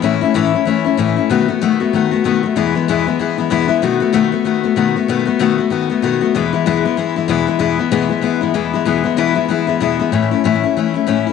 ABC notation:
X:1
M:4/4
L:1/8
Q:"Swing" 1/4=190
K:E
V:1 name="Steel-string acoustic guitar"
[A,,E,A,CE] [A,CE] [A,,E,A,CE] [A,CE] [E,A,CE] [A,CE] [A,,E,A,CE] [A,CE] | [B,,D,A,B,F] [A,B,F] [B,,D,A,B,F] [A,B,F] [D,A,B,F] [A,B,F] [B,,D,A,B,F] [A,B,F] | [E,,B,,E,G,B,E] [E,G,B,E] [E,,B,,E,G,B,E] [E,G,B,E] [E,G,B,E] [E,G,B,E] [E,,B,,E,G,B,E] [E,G,B,E] | [B,,D,A,B,F] [A,B,F] [B,,D,A,B,F] [A,B,F] [D,A,B,F] [A,B,F] [B,,D,A,B,F] [A,B,F] |
[B,,D,A,B,F] [A,B,F] [B,,D,A,B,F] [A,B,F] [D,A,B,F] [A,B,F] [B,,D,A,B,F] [A,B,F] | [E,,B,,E,G,B,E] [E,G,B,E] [E,,B,,E,G,B,E] [E,G,B,E] [E,G,B,E] [E,G,B,E] [E,,B,,E,G,B,E] [E,G,B,E] | [E,,B,,E,G,B,E] [E,G,B,E] [E,,B,,E,G,B,E] [E,G,B,E] [E,G,B,E] [E,G,B,E] [E,,B,,E,G,B,E] [E,G,B,E] | [E,,B,,E,G,B,E] [E,G,B,E] [E,,B,,E,G,B,E] [E,G,B,E] [E,G,B,E] [E,G,B,E] [E,,B,,E,G,B,E] [E,G,B,E] |
[A,,E,A,CE] [A,CE] [A,,E,A,CE] [A,CE] [E,A,CE] [A,CE] [A,,E,A,CE] [A,CE] |]